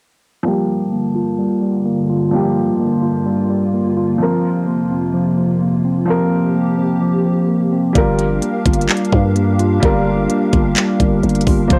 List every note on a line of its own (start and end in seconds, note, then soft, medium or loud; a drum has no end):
0.43 4.17 G2 medium
0.43 4.17 D3 medium
0.43 2.28 F3 medium
0.43 1.37 G3 medium
0.43 2.29 A#3 medium
0.43 7.91 A#3 medium
0.43 6.04 F4 medium
0.48 2.30 G4 medium
0.92 1.84 A#3 medium
1.15 2.08 F4 medium
1.38 1.61 G3 medium
1.62 2.31 G3 medium
1.85 2.79 A#3 medium
2.10 3.01 F4 medium
2.31 4.16 F3 medium
2.31 3.25 G3 medium
2.31 4.17 A#3 medium
2.36 4.18 G4 medium
2.80 3.72 A#3 medium
3.02 3.96 F4 medium
3.26 3.49 G3 medium
3.50 4.20 G3 medium
3.74 4.20 A#3 medium
3.97 4.20 F4 medium
4.18 7.92 F2 medium
4.18 7.91 C3 medium
4.18 6.03 F3 medium
4.18 5.13 F3 medium
4.18 6.04 C4 medium
4.23 6.05 A#4 medium
4.67 5.60 A#3 medium
4.91 5.83 C4 medium
5.14 5.37 F3 medium
5.38 6.07 F3 medium
5.61 6.53 A#3 medium
5.85 6.77 C4 medium
6.05 7.90 F3 medium
6.05 7.00 F3 medium
6.05 7.92 C4 medium
6.05 7.93 G4 medium
6.10 7.93 A#4 medium
6.54 7.47 A#3 medium
6.78 7.71 C4 medium
7.01 7.24 F3 medium
7.25 7.95 F3 medium
7.48 7.95 A#3 medium
7.72 7.95 C4 medium
7.93 8.40 G1 loud
7.93 9.78 G3 medium
7.93 8.87 G3 medium
7.93 11.67 D4 medium
7.93 9.79 F4 medium
7.93 11.67 G4 medium
7.93 11.79 A#4 medium
7.93 11.67 F5 medium
7.93 kick loud
7.93 closed hi-hat medium
7.98 9.80 A#4 medium
8.19 closed hi-hat medium
8.42 9.34 A#3 medium
8.42 closed hi-hat medium
8.65 8.88 G1 loud
8.65 9.58 F4 medium
8.65 kick loud
8.65 closed hi-hat medium
8.73 closed hi-hat medium
8.81 closed hi-hat medium
8.88 9.11 G3 medium
8.88 clap loud
8.88 closed hi-hat medium
8.97 closed hi-hat medium
9.05 closed hi-hat soft
9.12 9.80 G2 loud
9.12 9.81 G3 medium
9.12 kick loud
9.35 10.29 A#3 medium
9.35 closed hi-hat medium
9.59 10.51 F4 medium
9.59 closed hi-hat medium
9.80 10.28 G1 loud
9.80 11.65 G3 medium
9.80 10.75 G3 loud
9.80 11.66 F4 medium
9.80 kick loud
9.80 closed hi-hat medium
9.85 11.68 A#4 medium
10.30 11.22 A#3 medium
10.30 closed hi-hat medium
10.52 10.76 G1 loud
10.52 11.46 F4 medium
10.52 kick loud
10.52 closed hi-hat medium
10.76 10.99 G3 medium
10.76 clap loud
10.76 closed hi-hat medium
11.00 11.22 G1 loud
11.00 11.70 G3 medium
11.00 kick loud
11.00 closed hi-hat medium
11.23 11.46 G1 loud
11.23 11.70 A#3 medium
11.23 closed hi-hat soft
11.29 closed hi-hat medium
11.35 closed hi-hat medium
11.41 closed hi-hat medium
11.47 11.69 G1 loud
11.47 11.70 F4 medium
11.47 kick loud
11.47 open hi-hat medium
11.68 11.79 F1 loud
11.68 11.79 F3 medium
11.68 11.79 A#3 medium
11.68 11.79 F4 medium
11.68 11.79 C5 medium
11.68 11.79 A#5 medium
11.68 kick loud
11.68 closed hi-hat medium
11.73 11.79 C5 medium